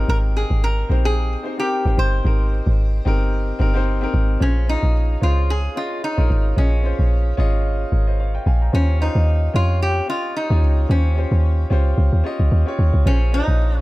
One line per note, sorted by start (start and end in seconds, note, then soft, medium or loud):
0.00 0.68 C4 loud
0.00 0.69 D#4 medium
0.00 0.69 G4 medium
0.00 0.69 A#4 loud
0.09 0.45 G#1 loud
0.09 0.17 A#4 loud
0.37 0.64 G#4 medium
0.50 0.84 G#1 medium
0.64 1.06 A#4 loud
0.89 1.36 A#1 medium
0.89 1.34 C4 medium
0.89 1.34 D#4 medium
0.89 1.34 G4 medium
0.89 1.35 C5 medium
1.05 1.59 G#4 medium
1.43 1.55 C4 medium
1.43 1.56 D#4 medium
1.43 1.56 G4 medium
1.43 1.56 C5 medium
1.58 1.79 C4 medium
1.58 1.80 D#4 medium
1.58 1.80 G4 medium
1.58 1.99 G4 loud
1.58 1.81 A#4 medium
1.85 1.96 G#1 medium
1.85 2.17 C4 medium
1.85 2.18 D#4 medium
1.85 2.18 G4 medium
1.85 2.18 C5 medium
1.98 2.21 G1 loud
1.98 3.84 C5 loud
2.24 2.61 G#1 loud
2.24 2.90 C4 medium
2.24 2.91 D#4 medium
2.24 2.91 G4 medium
2.24 2.92 A#4 medium
2.67 3.01 G#1 loud
3.05 3.53 G1 medium
3.05 3.50 C4 medium
3.05 3.50 D#4 medium
3.05 3.51 G4 medium
3.05 3.51 A#4 loud
3.59 4.07 G1 loud
3.59 3.71 C4 medium
3.59 3.72 D#4 medium
3.59 3.72 G4 medium
3.59 3.73 A#4 loud
3.74 3.95 C4 medium
3.74 3.96 D#4 medium
3.74 3.96 G4 medium
3.74 3.97 C5 loud
4.01 4.33 C4 medium
4.01 4.34 D#4 medium
4.01 4.34 G4 medium
4.01 4.35 A#4 loud
4.14 4.37 G#1 loud
4.40 4.77 A#1 loud
4.40 4.63 C#4 medium
4.40 4.69 C#4 medium
4.40 4.63 F4 medium
4.40 4.64 G#4 medium
4.40 4.64 C5 medium
4.67 5.12 C#4 medium
4.67 5.23 D#4 medium
4.67 5.12 F4 medium
4.67 5.13 G#4 medium
4.67 5.13 D#5 medium
4.83 5.17 A#1 loud
5.21 5.69 C#2 medium
5.21 5.66 C#4 medium
5.21 5.66 F4 medium
5.21 5.50 F4 medium
5.21 5.67 G#4 medium
5.21 5.67 C5 medium
5.50 5.78 G#4 loud
5.75 6.09 C#4 medium
5.75 6.09 F4 medium
5.75 6.04 F4 loud
5.75 6.09 G#4 medium
5.75 6.10 D#5 medium
6.04 6.58 D#4 loud
6.17 6.29 A#1 medium
6.17 6.49 C#4 medium
6.17 6.50 F4 medium
6.17 6.50 G#4 medium
6.17 6.51 A#4 medium
6.30 6.54 G#1 loud
6.56 6.93 A#1 loud
6.56 6.79 C#4 medium
6.56 7.35 C#4 medium
6.56 6.79 F4 medium
6.56 6.80 G#4 medium
6.56 6.80 D#5 medium
6.83 7.28 C#4 medium
6.83 7.28 F4 medium
6.83 7.29 G#4 medium
6.83 7.29 C5 medium
6.99 7.33 A#1 loud
7.37 7.85 G#1 medium
7.37 7.82 C#4 medium
7.37 7.83 F4 medium
7.37 7.83 G#4 medium
7.37 7.83 D#5 loud
7.92 8.39 G#1 medium
7.92 8.07 A#4 medium
7.92 8.07 C#5 medium
8.07 8.19 C5 medium
8.07 8.19 D#5 medium
8.20 8.34 C#5 medium
8.20 8.34 F5 medium
8.35 8.46 D#5 medium
8.35 8.46 G5 medium
8.46 8.70 A#1 loud
8.46 8.61 F5 medium
8.46 8.61 G#5 medium
8.62 8.87 G5 medium
8.62 8.87 A#5 medium
8.73 9.10 D#2 loud
8.73 8.95 C#4 medium
8.73 9.02 C#4 medium
8.73 8.96 F4 medium
8.73 8.96 G4 medium
8.73 8.96 C5 medium
9.00 9.44 C#4 medium
9.00 9.55 D#4 loud
9.00 9.45 F4 medium
9.00 9.45 G4 medium
9.00 9.46 C5 medium
9.15 9.49 D#2 loud
9.54 10.01 F2 medium
9.54 9.98 C#4 medium
9.54 9.99 F4 medium
9.54 9.82 F4 loud
9.54 9.99 G4 medium
9.54 10.00 C#5 medium
9.82 10.09 G4 loud
10.08 10.41 C#4 medium
10.08 10.42 F4 medium
10.08 10.34 F4 loud
10.08 10.42 G4 medium
10.08 10.42 D#5 medium
10.37 10.90 D#4 medium
10.50 10.64 D#2 medium
10.50 10.82 C#4 medium
10.50 10.82 F4 medium
10.50 10.83 G4 medium
10.50 10.83 C#5 medium
10.63 10.86 C#2 loud
10.89 11.26 D#2 loud
10.89 11.11 C#4 medium
10.89 11.67 C#4 medium
10.89 11.12 F4 medium
10.89 11.12 G4 medium
10.89 11.13 C5 medium
11.16 11.61 C#4 medium
11.16 11.61 F4 medium
11.16 11.61 G4 medium
11.16 11.62 C5 medium
11.31 11.65 D#2 loud
11.70 11.94 C#2 medium
11.70 12.15 C#4 medium
11.70 12.15 F4 medium
11.70 12.15 G4 medium
11.70 12.16 C5 loud
11.98 12.11 C#2 loud
12.13 12.23 D#2 medium
12.24 12.57 C#4 medium
12.24 12.58 F4 medium
12.24 12.58 G4 medium
12.24 12.59 D#5 loud
12.40 12.50 C#2 medium
12.52 12.65 D#2 loud
12.66 12.98 C#4 medium
12.66 12.99 F4 medium
12.66 12.99 G4 medium
12.66 12.99 C#5 loud
12.79 12.92 D#2 medium
12.94 13.04 C#2 medium
13.05 13.42 A#1 loud
13.05 13.28 C#4 medium
13.05 13.34 C#4 medium
13.05 13.28 F4 medium
13.05 13.28 G#4 medium
13.05 13.29 C5 medium
13.32 13.77 C#4 medium
13.32 13.81 D#4 loud
13.32 13.77 F4 medium
13.32 13.78 G#4 medium
13.32 13.78 C5 medium
13.48 13.81 A#1 loud